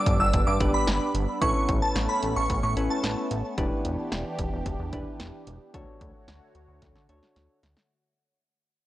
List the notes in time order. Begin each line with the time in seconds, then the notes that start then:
Already playing: G3 B3 D4
0.06 G1, kick, closed hi-hat
0.20 G1 E6
0.33 G1, kick, closed hi-hat
0.47 G2 D6
0.60 G1 B3 D4 G4 B4, kick, closed hi-hat
0.74 B5
0.87 G1, snare, closed hi-hat
1.14 G1, closed hi-hat
1.42 A1 A3 C#4 E4 A4 B4 C#6, kick, closed hi-hat
1.69 A1, kick, closed hi-hat
1.82 A5
1.96 A1, snare, closed hi-hat
2.09 B5
2.23 A1, closed hi-hat
2.36 A1 C#6
2.50 A1, kick, closed hi-hat
2.63 A2 C#6
2.77 A1 C#4 E4 A4 B4, closed hi-hat
2.90 A5
3.04 A1, snare, closed hi-hat
3.31 A1, closed hi-hat
3.58 E1 E3 D4 E4 G4 B4, kick, closed hi-hat
3.85 E1, closed hi-hat
4.12 E1, snare, closed hi-hat
4.39 E1, kick, closed hi-hat
4.53 E1
4.66 E1, kick, closed hi-hat
4.80 E2
4.93 E1 D4 E4 G4 B4, kick, closed hi-hat
5.20 E1, snare, closed hi-hat
5.47 E1, closed hi-hat
5.74 D2 D3 A3 D4 F#4 A4 C#5, kick, closed hi-hat
6.01 D2, kick, closed hi-hat
6.28 D2, snare, closed hi-hat
6.55 D2, closed hi-hat
6.68 D2
6.82 D2, kick, snare, closed hi-hat
6.96 D3, snare
7.09 D2 D4 F#4 A4 C#5, closed hi-hat
7.23 snare
7.36 D2, snare, closed hi-hat
7.63 D2, snare, closed hi-hat
7.77 snare